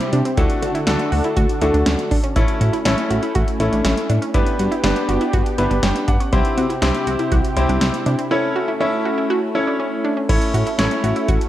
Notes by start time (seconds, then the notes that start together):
Already playing: C3 G3 C4 E4 G4
0.00 closed hi-hat
0.13 C3 D4, closed hi-hat
0.25 C4, closed hi-hat
0.37 D2 D3 A3 D4 E4 F#4 A4, kick, closed hi-hat
0.50 closed hi-hat
0.62 D3 F#4, closed hi-hat
0.75 E4, closed hi-hat
0.87 D2 A3 D4 F#4 A4, snare, closed hi-hat
0.99 closed hi-hat
1.12 D2 F#4, open hi-hat
1.24 E4, closed hi-hat
1.37 D2 F#4, kick, closed hi-hat
1.49 closed hi-hat
1.61 D2 A3 D4 E4 F#4 A4, closed hi-hat
1.74 D2 D4, closed hi-hat
1.86 D2 C#4, snare, closed hi-hat
1.99 closed hi-hat
2.11 D3 D4, kick, open hi-hat
2.24 C#4, closed hi-hat
2.36 A1 A3 C#4 E4 A4, kick, closed hi-hat
2.48 closed hi-hat
2.61 A2 F#4, closed hi-hat
2.73 E4, closed hi-hat
2.85 A1 A3 C#4 E4 A4, snare, closed hi-hat
2.98 closed hi-hat
3.10 A1 F#4, closed hi-hat
3.23 E4, closed hi-hat
3.35 A1 F#4, kick, closed hi-hat
3.48 closed hi-hat
3.60 A1 A3 C#4 E4 A4, closed hi-hat
3.72 A1 D4, closed hi-hat
3.85 A1 C#4, snare, closed hi-hat
3.97 closed hi-hat
4.10 A2 D4, closed hi-hat
4.22 C#4, closed hi-hat
4.34 G1 B3 D4 E4 G4 B4, kick, closed hi-hat
4.46 closed hi-hat
4.59 G2 F#4, closed hi-hat
4.72 E4, closed hi-hat
4.84 G1 B3 D4 G4 B4, snare, closed hi-hat
4.96 closed hi-hat
5.09 G1 F#4, closed hi-hat
5.21 E4, closed hi-hat
5.33 G1 F#4, kick, closed hi-hat
5.46 closed hi-hat
5.58 G1 B3 D4 E4 G4 B4 B5, closed hi-hat
5.71 G1 D4, closed hi-hat
5.83 G1 C#4 G5, snare, closed hi-hat
5.96 closed hi-hat
6.08 G2 D4 F#5, kick, closed hi-hat
6.20 C#4, closed hi-hat
6.33 C2 C3 C4 E4 G4 C5, kick, closed hi-hat
6.45 closed hi-hat
6.57 C3 F#4, closed hi-hat
6.70 E4, closed hi-hat
6.82 C2 C4 D4 E4 G4 C5, snare, closed hi-hat
6.94 closed hi-hat
7.07 C2 F#4, closed hi-hat
7.19 E4, closed hi-hat
7.32 C2 F#4, kick, closed hi-hat
7.45 closed hi-hat
7.56 C2 C4 E4 G4 C5, closed hi-hat
7.69 C2 D4, closed hi-hat
7.81 C2 C4, snare, closed hi-hat
7.94 closed hi-hat
8.06 C3 D4, closed hi-hat
8.19 C4, closed hi-hat
8.31 A3 C#4 E4 A4 C#5
8.56 F#4
8.68 E4
8.80 C#4 E4 A4 E5
9.05 F#4
9.18 E4
9.30 F#4
9.55 C#4 E4 A4 C#5
9.67 D4
9.80 C#4
10.05 D4
10.17 C#4
10.29 A1 A3 C#4 E4 A4 C#5, kick, closed hi-hat, crash
10.41 closed hi-hat
10.54 A2 F#4, closed hi-hat
10.67 E4, closed hi-hat
10.79 A1 C#4 E4 A4 C#5, snare, closed hi-hat
10.91 closed hi-hat
11.04 A1 F#4, closed hi-hat
11.16 E4, closed hi-hat
11.28 A1 F#4, kick, closed hi-hat
11.41 closed hi-hat